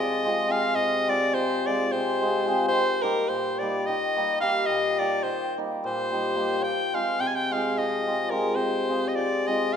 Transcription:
Already playing: C3 G#3 D#5
0.00 F3
0.24 G#3 C4 F4 G#4
0.49 G#3 C4 F4 G#4 F5
0.75 C3 D#5
1.08 G#3 C4 F4 G#4 D5
1.34 F3 C5
1.66 G#3 C4 F4 G#4 D5
1.92 C3 C5
2.21 G#3 C4 F4 G#4
2.45 G#3 C4 F4 G#4
2.68 D#3 C5
3.02 G3 A#3 D#4 G4 A#4
3.29 A#2 C5
3.59 G3 A#3 D#4 G4 D5
3.86 D#3 D#5
4.16 G3 A#3 D#4 G4
4.41 G3 A#3 D#4 G4 F5
4.66 A#2 D#5
4.99 G3 A#3 D#4 G4 D5
5.23 D#3 C5
5.57 G3 A#3 D#4 G4
5.84 A#2 C5
6.11 G3 A#3 D#4 G4
6.35 G3 A#3 D#4 G4
6.60 F3 G5
6.93 G#3 C4 F4 G#4 F5
7.20 C3 G5
7.27 G#5
7.35 G5
7.51 G#3 C4 F4 G#4 F5
7.78 F3 D#5
8.07 G#3 C4 F4 G#4
8.30 G#3 C4 F4 G#4 A#4
8.55 C3 C5
8.89 G#3 C4 F4 G#4
9.08 D#5
9.14 F3 D5
9.47 G#3 C4 F4 G#4 D#5
9.73 F5

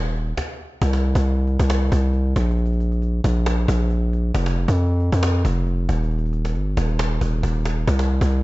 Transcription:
Already playing: D#1
0.05 cajon slap
0.10 cajon slap
0.15 cajon slap
0.27 cajon slap
0.37 cajon bass, cajon slap
0.82 C2, cajon bass
0.93 cajon slap
1.03 cajon slap
1.15 C2, cajon bass
1.25 cajon slap
1.47 cajon slap
1.59 C2, cajon bass
1.70 cajon slap
1.76 cajon slap
1.82 cajon slap
1.87 cajon slap
1.92 C2, cajon bass
2.14 cajon slap
2.36 A#1, cajon bass, cajon slap
2.44 cajon slap
2.51 cajon slap
2.58 cajon slap
2.66 cajon slap
2.73 cajon slap
2.80 cajon slap
2.92 cajon slap
3.02 cajon slap
3.24 A#1, cajon bass
3.46 cajon slap
3.68 A#1, cajon bass
3.74 cajon slap
3.80 cajon slap
3.85 cajon slap
3.90 cajon slap
4.13 cajon slap
4.35 F1, cajon bass
4.46 cajon slap
4.56 cajon slap
4.68 F2, cajon bass
4.78 cajon slap
5.00 cajon slap
5.12 F2, cajon bass
5.23 cajon slap
5.29 cajon slap
5.34 cajon slap
5.40 cajon slap
5.45 F1, cajon bass
5.67 cajon slap
5.89 D#1, cajon bass, cajon slap
5.96 cajon slap
6.04 cajon slap
6.11 cajon slap
6.18 cajon slap
6.26 cajon slap
6.33 cajon slap
6.45 cajon slap
6.55 G1, cajon slap
6.77 D#1, cajon bass, cajon slap
6.89 cajon slap
6.99 cajon slap
7.11 cajon slap
7.21 D#1, cajon bass
7.33 cajon slap
7.43 D#1, cajon bass
7.49 cajon slap
7.55 cajon slap
7.60 cajon slap
7.65 cajon slap
7.88 C2, cajon bass
7.99 cajon slap
8.09 cajon slap
8.21 C2, cajon bass
8.31 cajon slap

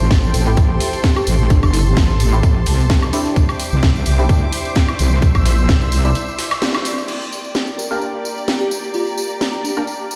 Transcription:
Already playing: A3 C4 E4 G4 A4 C5 G5 A5 C6
0.00 A1
0.11 kick, snare, open hi-hat, tambourine
0.23 tambourine
0.34 A1 A4, closed hi-hat, open hi-hat, tambourine
0.46 A3 C4 E4 G4 A4, tambourine
0.57 A#1, kick, closed hi-hat, tambourine
0.80 closed hi-hat, open hi-hat, tambourine
0.93 closed hi-hat, tambourine
1.04 kick, snare, closed hi-hat, tambourine
1.16 G4, tambourine, high woodblock
1.27 A1, closed hi-hat, open hi-hat, tambourine
1.38 tambourine
1.50 A1 D4 A5, kick, closed hi-hat, tambourine
1.63 G1 D4, kick, tambourine, high woodblock
1.73 E4, closed hi-hat, open hi-hat, tambourine
1.86 tambourine
1.97 A1, kick, snare, closed hi-hat, tambourine
2.09 snare, tambourine
2.20 closed hi-hat, open hi-hat, tambourine
2.33 A3 C4 E4 G4, tambourine
2.43 A#1, kick, closed hi-hat, tambourine
2.66 C2, closed hi-hat, open hi-hat, tambourine
2.80 tambourine
2.90 kick, snare, closed hi-hat, tambourine
3.02 tambourine, high woodblock
3.13 C4 D4 E4 G4, closed hi-hat, open hi-hat, tambourine
3.25 snare, tambourine
3.36 C2 E4 C5 E5 D6, kick, closed hi-hat, tambourine
3.42 D5
3.49 snare, tambourine, high woodblock
3.59 closed hi-hat, open hi-hat, tambourine
3.72 C2, tambourine
3.83 C6, kick, snare, open hi-hat, tambourine
3.96 tambourine
4.06 C2, closed hi-hat, open hi-hat, tambourine
4.19 C4 D4 E4 G4, tambourine
4.29 D2, kick, closed hi-hat, tambourine
4.52 closed hi-hat, open hi-hat, tambourine
4.65 closed hi-hat, tambourine
4.75 kick, snare, closed hi-hat, tambourine
4.88 tambourine, high woodblock
4.99 C2, closed hi-hat, open hi-hat, tambourine
5.11 tambourine
5.22 C2 E6, kick, closed hi-hat, tambourine
5.35 A#1, kick, tambourine, high woodblock
5.46 snare, open hi-hat, tambourine
5.58 tambourine
5.69 C2, kick, snare, closed hi-hat, tambourine
5.81 tambourine
5.92 closed hi-hat, open hi-hat, tambourine
6.05 C4 D4 E4 G4, tambourine
6.15 closed hi-hat, tambourine
6.28 tambourine
6.39 snare, open hi-hat, tambourine
6.51 snare, open hi-hat, tambourine, high woodblock
6.62 snare, open hi-hat, tambourine
6.74 tambourine, high woodblock
6.85 closed hi-hat, open hi-hat, tambourine
6.98 tambourine
7.08 A#3 G4 D5, tambourine, crash
7.21 tambourine
7.32 tambourine
7.38 A#5
7.44 tambourine
7.55 snare, tambourine
7.67 tambourine
7.78 A#4, tambourine
7.91 A#3 D4 G4 A#4, tambourine
8.01 tambourine
8.25 tambourine
8.38 tambourine
8.48 snare, tambourine
8.60 G4, tambourine
8.71 tambourine
8.84 tambourine
8.94 F4, tambourine
9.07 tambourine
9.18 tambourine
9.30 tambourine
9.41 snare, tambourine
9.53 tambourine
9.64 D4, tambourine
9.77 A#3 D4 G4 A#4, tambourine
9.87 tambourine
10.11 tambourine

